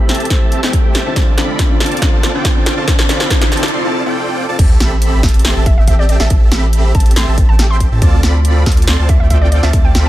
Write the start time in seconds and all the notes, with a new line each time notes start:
Already playing: riser
0.00 A3 E4 G4 C5
0.09 C4 G4 A4 E5 A5, snare, closed hi-hat
0.15 closed hi-hat
0.20 closed hi-hat
0.25 closed hi-hat
0.30 A3 C4 E4 G4 A4 C5 E5, kick, snare, closed hi-hat
0.41 C4 G4 A4 E5 A5
0.52 closed hi-hat
0.62 A3 C4 E4 G4 A4 C5 E5 G5, snare
0.73 kick, closed hi-hat
0.84 A3 E4 G4 C5
0.95 snare, closed hi-hat
1.05 D3 C4 D4 F4 G4 A4 C5 E5 A5
1.16 C4 A4, kick, snare, closed hi-hat
1.37 D3 C4 D4 F4 A4 C5 D5 B5, snare, closed hi-hat
1.59 kick, snare, closed hi-hat
1.69 D3 D4 F4 C5
1.80 C4 F4 A4 D5 A5, snare, closed hi-hat
1.86 closed hi-hat
1.92 closed hi-hat
1.97 closed hi-hat
2.01 D3 C4 D4 F4 A4 C5 D5 C6, kick, snare, closed hi-hat
2.13 C4 F4 A4 D5 A5
2.23 snare, closed hi-hat
2.34 D3 C4 D4 F4 A4 C5 D5 G5
2.45 kick, snare, closed hi-hat
2.55 D3 D4 F4 C5
2.66 snare, closed hi-hat
2.76 D3 C4 D4 F4 A4 C5 D5 A5
2.87 C4 F4 A4 D5 A5, kick, snare, closed hi-hat
2.99 snare
3.08 D3 C4 D4 F4 A4 C5 D5 B5, snare, closed hi-hat
3.20 snare
3.30 kick, snare, closed hi-hat
3.41 D3 D4 F4 C5, snare
3.52 C4 F4 A4 D5 A5, snare, closed hi-hat
3.57 closed hi-hat
3.63 snare, closed hi-hat
3.68 closed hi-hat
3.73 C4 F4 A4 D5 C6
3.84 C4 F4 A4 D5 A5
4.06 C4 F4 A4 D5 G5
4.49 C4 F4 A4 D5 A5
4.59 A1, kick, closed hi-hat, crash, sub drop
4.80 A1 C4 G4 A4 E5 B5, snare, closed hi-hat
5.02 closed hi-hat
5.23 A1, kick, snare, closed hi-hat
5.29 closed hi-hat
5.34 closed hi-hat
5.39 closed hi-hat
5.45 A1 C4 G4 A4 E5 C6, snare, closed hi-hat
5.56 A1 C4 G4 A4 E5 A5
5.66 E5, kick, closed hi-hat
5.77 A1 C4 G4 A4 E5 G5
5.88 E5, kick, closed hi-hat
5.99 D5
6.09 D5, closed hi-hat
6.20 A1 C4 G4 A4 E5 A5, snare
6.30 A1 C4 A4 E5 A5, kick, closed hi-hat
6.52 A1 C4 G4 A4 E5 B5, snare, closed hi-hat
6.73 closed hi-hat
6.95 A1 C4 G4 E5 A5, kick, closed hi-hat
7.00 closed hi-hat
7.06 closed hi-hat
7.11 closed hi-hat
7.16 A1 C4 G4 A4 E5 C6, snare, closed hi-hat
7.27 A1 C4 G4 A4 E5 A5
7.38 kick, closed hi-hat
7.49 A1 C4 G4 A4 E5 G5 A5
7.59 snare, closed hi-hat
7.71 C6
7.80 kick, closed hi-hat
7.92 A2 C4 G4 A4 E5 A5
8.02 D2 C4 F4 A4 D5 A5, kick, closed hi-hat
8.23 D2 C4 F4 A4 D5 B5, snare, closed hi-hat
8.45 closed hi-hat
8.66 D2 C4 F4, kick, snare, closed hi-hat
8.72 closed hi-hat
8.77 closed hi-hat
8.82 closed hi-hat
8.88 D2 C4 F4 A4 D5 C6, snare, closed hi-hat
8.99 D2 C4 F4 A4 D5 A5
9.09 E5, kick, closed hi-hat
9.20 D2 C4 F4 A4 D5 E5 G5
9.30 E5, kick, closed hi-hat
9.42 D5
9.52 D5, closed hi-hat
9.63 D2 C4 F4 A4 D5 E5 A5, snare
9.73 D2 A4 A5, kick, closed hi-hat
9.85 G5
9.95 D2 C4 F4 A4 D5 B5, snare, closed hi-hat